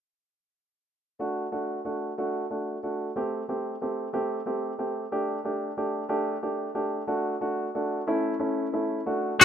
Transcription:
1.19 1.45 A3 soft
1.19 1.45 D4 soft
1.19 1.46 F#4 medium
1.52 1.78 A3 soft
1.52 1.78 D4 soft
1.52 1.78 F#4 medium
1.85 2.11 A3 soft
1.85 2.11 D4 soft
1.85 2.11 F#4 soft
2.18 2.44 A3 medium
2.18 2.44 D4 soft
2.18 2.44 F#4 medium
2.50 2.76 A3 soft
2.50 2.77 D4 soft
2.50 2.77 F#4 soft
2.83 3.09 A3 soft
2.83 3.09 D4 soft
2.83 3.09 F#4 soft
3.16 3.42 A3 medium
3.16 3.42 C4 soft
3.16 3.42 G4 medium
3.48 3.74 A3 soft
3.48 3.75 C4 soft
3.48 3.75 G4 soft
3.81 4.07 A3 soft
3.81 4.07 C4 soft
3.81 4.07 G4 medium
4.13 4.39 A3 medium
4.13 4.40 C4 soft
4.13 4.40 G4 medium
4.46 4.72 A3 soft
4.46 4.72 C4 soft
4.46 4.72 G4 medium
4.78 5.04 A3 medium
4.78 5.05 C4 soft
4.78 5.05 G4 medium
5.12 5.38 A3 medium
5.12 5.38 D4 soft
5.12 5.38 G4 medium
5.44 5.70 A3 medium
5.44 5.70 D4 soft
5.44 5.71 G4 medium
5.77 6.03 A3 soft
5.77 6.03 D4 soft
5.77 6.03 G4 medium
6.09 6.35 A3 medium
6.09 6.35 D4 medium
6.09 6.35 G4 medium
6.42 6.68 A3 soft
6.42 6.69 D4 soft
6.42 6.69 G4 medium
6.75 7.01 A3 medium
6.75 7.01 D4 soft
6.75 7.01 G4 medium
7.07 7.34 A3 medium
7.07 7.34 D4 medium
7.07 7.34 F#4 medium
7.41 7.67 A3 soft
7.41 7.67 D4 soft
7.41 7.67 F#4 medium
7.75 8.00 A3 soft
7.75 8.00 D4 medium
7.75 8.00 F#4 medium
8.07 8.33 A3 medium
8.07 8.33 C#4 medium
8.07 8.33 E4 medium
8.39 8.66 A3 medium
8.39 8.66 C#4 soft
8.39 8.66 E4 medium
8.73 8.99 A3 medium
8.73 8.99 C#4 soft
8.73 8.99 E4 medium
9.06 9.32 A3 medium
9.06 9.32 D4 soft
9.06 9.32 F#4 medium
9.38 9.45 A3 soft
9.38 9.45 D4 medium
9.38 9.45 F#4 medium

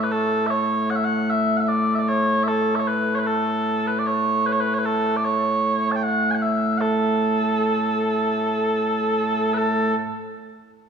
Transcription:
0.00 9.94 A2 medium
0.00 9.94 A3 medium
0.00 0.11 B4 medium
0.12 0.47 A4 loud
0.47 0.90 C#5 medium
0.47 0.50 E5 medium
0.90 0.96 F#5 loud
0.96 1.04 E5 medium
1.04 1.30 F#5 loud
1.30 1.57 E5 loud
1.57 1.69 E5 medium
1.57 1.60 F#5 medium
1.69 1.95 D5 medium
1.95 2.08 D5 medium
1.95 1.99 E5 medium
2.08 2.43 C#5 medium
2.43 2.48 E5 loud
2.48 2.75 A4 loud
2.75 2.80 E5 medium
2.80 2.88 C#5 medium
2.88 3.15 B4 medium
3.15 3.26 B4 medium
3.15 3.19 C#5 medium
3.27 3.87 A4 medium
3.87 3.99 B4 medium
3.99 4.06 D5 medium
4.06 4.47 C#5 medium
4.47 4.53 B4 medium
4.53 4.60 C#5 medium
4.61 4.74 B4 medium
4.74 4.79 C#5 medium
4.79 4.85 B4 medium
4.85 5.16 A4 loud
5.16 5.24 D5 medium
5.24 5.92 C#5 medium
5.92 5.96 A5 medium
5.96 6.03 G5 medium
6.03 6.31 F#5 loud
6.31 6.42 F#5 medium
6.31 6.35 G#5 medium
6.42 6.78 E5 medium
6.78 9.54 A4 medium
6.78 6.81 F#5 medium
9.54 9.94 A4 medium
9.54 9.58 B4 medium

